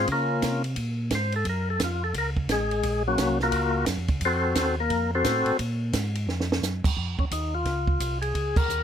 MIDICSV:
0, 0, Header, 1, 4, 480
1, 0, Start_track
1, 0, Tempo, 344234
1, 117, Time_signature, 4, 2, 24, 8
1, 12318, End_track
2, 0, Start_track
2, 0, Title_t, "Tonewheel organ"
2, 0, Program_c, 0, 16
2, 165, Note_on_c, 0, 70, 73
2, 170, Note_on_c, 0, 65, 62
2, 172, Note_on_c, 0, 58, 65
2, 172, Note_on_c, 0, 61, 60
2, 871, Note_off_c, 0, 70, 0
2, 873, Note_off_c, 0, 65, 0
2, 875, Note_off_c, 0, 58, 0
2, 875, Note_off_c, 0, 61, 0
2, 1603, Note_on_c, 0, 72, 72
2, 1874, Note_off_c, 0, 72, 0
2, 1896, Note_on_c, 0, 69, 80
2, 2050, Note_off_c, 0, 69, 0
2, 2083, Note_on_c, 0, 70, 80
2, 2354, Note_off_c, 0, 70, 0
2, 2374, Note_on_c, 0, 69, 96
2, 2529, Note_off_c, 0, 69, 0
2, 2565, Note_on_c, 0, 65, 64
2, 2835, Note_off_c, 0, 65, 0
2, 2843, Note_on_c, 0, 69, 91
2, 3004, Note_off_c, 0, 69, 0
2, 3040, Note_on_c, 0, 70, 92
2, 3209, Note_off_c, 0, 70, 0
2, 3508, Note_on_c, 0, 68, 78
2, 3519, Note_on_c, 0, 56, 69
2, 4221, Note_off_c, 0, 68, 0
2, 4227, Note_off_c, 0, 56, 0
2, 4288, Note_on_c, 0, 54, 73
2, 4289, Note_on_c, 0, 66, 88
2, 4291, Note_on_c, 0, 61, 74
2, 4297, Note_on_c, 0, 58, 73
2, 4721, Note_off_c, 0, 54, 0
2, 4721, Note_off_c, 0, 66, 0
2, 4722, Note_off_c, 0, 61, 0
2, 4726, Note_off_c, 0, 58, 0
2, 4781, Note_on_c, 0, 70, 86
2, 4786, Note_on_c, 0, 65, 70
2, 4786, Note_on_c, 0, 66, 69
2, 4788, Note_on_c, 0, 58, 74
2, 5372, Note_off_c, 0, 70, 0
2, 5375, Note_off_c, 0, 65, 0
2, 5375, Note_off_c, 0, 66, 0
2, 5376, Note_off_c, 0, 58, 0
2, 5929, Note_on_c, 0, 72, 92
2, 5932, Note_on_c, 0, 66, 68
2, 5932, Note_on_c, 0, 69, 72
2, 5934, Note_on_c, 0, 60, 70
2, 6632, Note_off_c, 0, 72, 0
2, 6633, Note_off_c, 0, 66, 0
2, 6633, Note_off_c, 0, 69, 0
2, 6635, Note_off_c, 0, 60, 0
2, 6694, Note_on_c, 0, 70, 93
2, 6697, Note_on_c, 0, 58, 74
2, 7124, Note_off_c, 0, 70, 0
2, 7125, Note_off_c, 0, 58, 0
2, 7178, Note_on_c, 0, 72, 98
2, 7180, Note_on_c, 0, 66, 76
2, 7182, Note_on_c, 0, 69, 76
2, 7185, Note_on_c, 0, 60, 72
2, 7770, Note_off_c, 0, 72, 0
2, 7771, Note_off_c, 0, 66, 0
2, 7772, Note_off_c, 0, 69, 0
2, 7774, Note_off_c, 0, 60, 0
2, 10036, Note_on_c, 0, 61, 74
2, 10112, Note_off_c, 0, 61, 0
2, 10214, Note_on_c, 0, 63, 77
2, 10517, Note_off_c, 0, 63, 0
2, 10521, Note_on_c, 0, 65, 88
2, 11415, Note_off_c, 0, 65, 0
2, 11458, Note_on_c, 0, 68, 90
2, 11948, Note_on_c, 0, 70, 111
2, 11954, Note_off_c, 0, 68, 0
2, 12318, Note_off_c, 0, 70, 0
2, 12318, End_track
3, 0, Start_track
3, 0, Title_t, "Tonewheel organ"
3, 0, Program_c, 1, 16
3, 107, Note_on_c, 1, 49, 81
3, 578, Note_off_c, 1, 49, 0
3, 586, Note_on_c, 1, 48, 78
3, 1057, Note_off_c, 1, 48, 0
3, 1067, Note_on_c, 1, 46, 75
3, 1538, Note_off_c, 1, 46, 0
3, 1545, Note_on_c, 1, 44, 80
3, 2016, Note_off_c, 1, 44, 0
3, 2022, Note_on_c, 1, 42, 84
3, 2495, Note_off_c, 1, 42, 0
3, 2507, Note_on_c, 1, 41, 78
3, 2977, Note_off_c, 1, 41, 0
3, 2990, Note_on_c, 1, 37, 75
3, 3459, Note_off_c, 1, 37, 0
3, 3471, Note_on_c, 1, 33, 82
3, 3939, Note_off_c, 1, 33, 0
3, 3949, Note_on_c, 1, 34, 82
3, 4418, Note_off_c, 1, 34, 0
3, 4431, Note_on_c, 1, 36, 78
3, 4899, Note_off_c, 1, 36, 0
3, 4906, Note_on_c, 1, 37, 79
3, 5377, Note_off_c, 1, 37, 0
3, 5384, Note_on_c, 1, 42, 87
3, 5539, Note_on_c, 1, 41, 55
3, 5545, Note_off_c, 1, 42, 0
3, 5699, Note_on_c, 1, 37, 66
3, 5708, Note_off_c, 1, 41, 0
3, 5856, Note_off_c, 1, 37, 0
3, 5870, Note_on_c, 1, 41, 85
3, 6338, Note_off_c, 1, 41, 0
3, 6351, Note_on_c, 1, 39, 84
3, 6818, Note_off_c, 1, 39, 0
3, 6833, Note_on_c, 1, 41, 78
3, 7300, Note_off_c, 1, 41, 0
3, 7313, Note_on_c, 1, 45, 87
3, 7591, Note_off_c, 1, 45, 0
3, 7608, Note_on_c, 1, 45, 42
3, 7699, Note_off_c, 1, 45, 0
3, 7797, Note_on_c, 1, 46, 84
3, 8261, Note_off_c, 1, 46, 0
3, 8269, Note_on_c, 1, 44, 84
3, 8737, Note_off_c, 1, 44, 0
3, 8741, Note_on_c, 1, 41, 82
3, 9213, Note_off_c, 1, 41, 0
3, 9234, Note_on_c, 1, 42, 85
3, 9516, Note_off_c, 1, 42, 0
3, 9538, Note_on_c, 1, 42, 38
3, 9627, Note_off_c, 1, 42, 0
3, 9714, Note_on_c, 1, 41, 78
3, 9996, Note_off_c, 1, 41, 0
3, 10015, Note_on_c, 1, 41, 36
3, 10105, Note_off_c, 1, 41, 0
3, 10198, Note_on_c, 1, 39, 78
3, 10663, Note_off_c, 1, 39, 0
3, 10671, Note_on_c, 1, 37, 75
3, 11139, Note_off_c, 1, 37, 0
3, 11157, Note_on_c, 1, 36, 72
3, 11623, Note_off_c, 1, 36, 0
3, 11633, Note_on_c, 1, 37, 80
3, 11917, Note_off_c, 1, 37, 0
3, 11935, Note_on_c, 1, 37, 35
3, 12025, Note_off_c, 1, 37, 0
3, 12107, Note_on_c, 1, 39, 77
3, 12318, Note_off_c, 1, 39, 0
3, 12318, End_track
4, 0, Start_track
4, 0, Title_t, "Drums"
4, 104, Note_on_c, 9, 51, 60
4, 111, Note_on_c, 9, 36, 23
4, 244, Note_off_c, 9, 51, 0
4, 250, Note_off_c, 9, 36, 0
4, 587, Note_on_c, 9, 44, 50
4, 587, Note_on_c, 9, 51, 64
4, 593, Note_on_c, 9, 36, 19
4, 593, Note_on_c, 9, 38, 63
4, 727, Note_off_c, 9, 44, 0
4, 727, Note_off_c, 9, 51, 0
4, 732, Note_off_c, 9, 36, 0
4, 732, Note_off_c, 9, 38, 0
4, 891, Note_on_c, 9, 51, 46
4, 1031, Note_off_c, 9, 51, 0
4, 1059, Note_on_c, 9, 51, 56
4, 1069, Note_on_c, 9, 36, 18
4, 1199, Note_off_c, 9, 51, 0
4, 1208, Note_off_c, 9, 36, 0
4, 1541, Note_on_c, 9, 44, 58
4, 1541, Note_on_c, 9, 51, 70
4, 1546, Note_on_c, 9, 38, 68
4, 1549, Note_on_c, 9, 36, 24
4, 1680, Note_off_c, 9, 44, 0
4, 1680, Note_off_c, 9, 51, 0
4, 1686, Note_off_c, 9, 38, 0
4, 1688, Note_off_c, 9, 36, 0
4, 1844, Note_on_c, 9, 51, 46
4, 1983, Note_off_c, 9, 51, 0
4, 2022, Note_on_c, 9, 51, 61
4, 2030, Note_on_c, 9, 36, 19
4, 2161, Note_off_c, 9, 51, 0
4, 2169, Note_off_c, 9, 36, 0
4, 2504, Note_on_c, 9, 44, 57
4, 2504, Note_on_c, 9, 51, 62
4, 2510, Note_on_c, 9, 38, 68
4, 2512, Note_on_c, 9, 36, 22
4, 2644, Note_off_c, 9, 44, 0
4, 2644, Note_off_c, 9, 51, 0
4, 2649, Note_off_c, 9, 38, 0
4, 2651, Note_off_c, 9, 36, 0
4, 2988, Note_on_c, 9, 51, 63
4, 2995, Note_on_c, 9, 36, 20
4, 3127, Note_off_c, 9, 51, 0
4, 3134, Note_off_c, 9, 36, 0
4, 3299, Note_on_c, 9, 36, 53
4, 3438, Note_off_c, 9, 36, 0
4, 3470, Note_on_c, 9, 44, 53
4, 3470, Note_on_c, 9, 51, 68
4, 3476, Note_on_c, 9, 36, 17
4, 3476, Note_on_c, 9, 38, 69
4, 3610, Note_off_c, 9, 44, 0
4, 3610, Note_off_c, 9, 51, 0
4, 3615, Note_off_c, 9, 38, 0
4, 3616, Note_off_c, 9, 36, 0
4, 3780, Note_on_c, 9, 51, 46
4, 3920, Note_off_c, 9, 51, 0
4, 3949, Note_on_c, 9, 51, 65
4, 3955, Note_on_c, 9, 36, 26
4, 4089, Note_off_c, 9, 51, 0
4, 4094, Note_off_c, 9, 36, 0
4, 4433, Note_on_c, 9, 44, 57
4, 4433, Note_on_c, 9, 51, 67
4, 4435, Note_on_c, 9, 36, 24
4, 4439, Note_on_c, 9, 38, 69
4, 4573, Note_off_c, 9, 44, 0
4, 4573, Note_off_c, 9, 51, 0
4, 4575, Note_off_c, 9, 36, 0
4, 4578, Note_off_c, 9, 38, 0
4, 4738, Note_on_c, 9, 38, 40
4, 4878, Note_off_c, 9, 38, 0
4, 4906, Note_on_c, 9, 51, 64
4, 4914, Note_on_c, 9, 36, 18
4, 5046, Note_off_c, 9, 51, 0
4, 5053, Note_off_c, 9, 36, 0
4, 5384, Note_on_c, 9, 44, 55
4, 5384, Note_on_c, 9, 51, 68
4, 5390, Note_on_c, 9, 38, 68
4, 5393, Note_on_c, 9, 36, 22
4, 5524, Note_off_c, 9, 44, 0
4, 5524, Note_off_c, 9, 51, 0
4, 5529, Note_off_c, 9, 38, 0
4, 5532, Note_off_c, 9, 36, 0
4, 5692, Note_on_c, 9, 51, 46
4, 5698, Note_on_c, 9, 36, 59
4, 5832, Note_off_c, 9, 51, 0
4, 5838, Note_off_c, 9, 36, 0
4, 5867, Note_on_c, 9, 51, 65
4, 5876, Note_on_c, 9, 36, 21
4, 6006, Note_off_c, 9, 51, 0
4, 6015, Note_off_c, 9, 36, 0
4, 6350, Note_on_c, 9, 44, 56
4, 6350, Note_on_c, 9, 51, 69
4, 6355, Note_on_c, 9, 36, 22
4, 6355, Note_on_c, 9, 38, 69
4, 6489, Note_off_c, 9, 44, 0
4, 6489, Note_off_c, 9, 51, 0
4, 6494, Note_off_c, 9, 36, 0
4, 6495, Note_off_c, 9, 38, 0
4, 6832, Note_on_c, 9, 51, 56
4, 6837, Note_on_c, 9, 36, 25
4, 6972, Note_off_c, 9, 51, 0
4, 6976, Note_off_c, 9, 36, 0
4, 7313, Note_on_c, 9, 44, 68
4, 7313, Note_on_c, 9, 51, 68
4, 7317, Note_on_c, 9, 36, 24
4, 7319, Note_on_c, 9, 38, 72
4, 7453, Note_off_c, 9, 44, 0
4, 7453, Note_off_c, 9, 51, 0
4, 7457, Note_off_c, 9, 36, 0
4, 7458, Note_off_c, 9, 38, 0
4, 7611, Note_on_c, 9, 51, 48
4, 7750, Note_off_c, 9, 51, 0
4, 7794, Note_on_c, 9, 51, 66
4, 7798, Note_on_c, 9, 36, 20
4, 7934, Note_off_c, 9, 51, 0
4, 7937, Note_off_c, 9, 36, 0
4, 8272, Note_on_c, 9, 44, 55
4, 8272, Note_on_c, 9, 51, 72
4, 8277, Note_on_c, 9, 36, 26
4, 8278, Note_on_c, 9, 38, 69
4, 8412, Note_off_c, 9, 44, 0
4, 8412, Note_off_c, 9, 51, 0
4, 8417, Note_off_c, 9, 36, 0
4, 8417, Note_off_c, 9, 38, 0
4, 8580, Note_on_c, 9, 51, 49
4, 8720, Note_off_c, 9, 51, 0
4, 8767, Note_on_c, 9, 38, 47
4, 8906, Note_off_c, 9, 38, 0
4, 8930, Note_on_c, 9, 38, 57
4, 9069, Note_off_c, 9, 38, 0
4, 9093, Note_on_c, 9, 38, 90
4, 9233, Note_off_c, 9, 38, 0
4, 9244, Note_on_c, 9, 44, 61
4, 9249, Note_on_c, 9, 38, 58
4, 9383, Note_off_c, 9, 44, 0
4, 9389, Note_off_c, 9, 38, 0
4, 9543, Note_on_c, 9, 36, 72
4, 9553, Note_on_c, 9, 49, 78
4, 9683, Note_off_c, 9, 36, 0
4, 9693, Note_off_c, 9, 49, 0
4, 9720, Note_on_c, 9, 36, 21
4, 9859, Note_off_c, 9, 36, 0
4, 10022, Note_on_c, 9, 36, 50
4, 10161, Note_off_c, 9, 36, 0
4, 10199, Note_on_c, 9, 36, 18
4, 10199, Note_on_c, 9, 44, 50
4, 10199, Note_on_c, 9, 51, 68
4, 10338, Note_off_c, 9, 44, 0
4, 10338, Note_off_c, 9, 51, 0
4, 10339, Note_off_c, 9, 36, 0
4, 10672, Note_on_c, 9, 51, 49
4, 10677, Note_on_c, 9, 36, 22
4, 10678, Note_on_c, 9, 38, 32
4, 10812, Note_off_c, 9, 51, 0
4, 10817, Note_off_c, 9, 36, 0
4, 10817, Note_off_c, 9, 38, 0
4, 10980, Note_on_c, 9, 36, 51
4, 11120, Note_off_c, 9, 36, 0
4, 11159, Note_on_c, 9, 36, 18
4, 11159, Note_on_c, 9, 44, 44
4, 11159, Note_on_c, 9, 51, 66
4, 11298, Note_off_c, 9, 36, 0
4, 11299, Note_off_c, 9, 44, 0
4, 11299, Note_off_c, 9, 51, 0
4, 11466, Note_on_c, 9, 51, 43
4, 11605, Note_off_c, 9, 51, 0
4, 11640, Note_on_c, 9, 36, 23
4, 11642, Note_on_c, 9, 51, 56
4, 11779, Note_off_c, 9, 36, 0
4, 11781, Note_off_c, 9, 51, 0
4, 11942, Note_on_c, 9, 36, 84
4, 11945, Note_on_c, 9, 49, 80
4, 12082, Note_off_c, 9, 36, 0
4, 12085, Note_off_c, 9, 49, 0
4, 12123, Note_on_c, 9, 44, 50
4, 12263, Note_off_c, 9, 44, 0
4, 12318, End_track
0, 0, End_of_file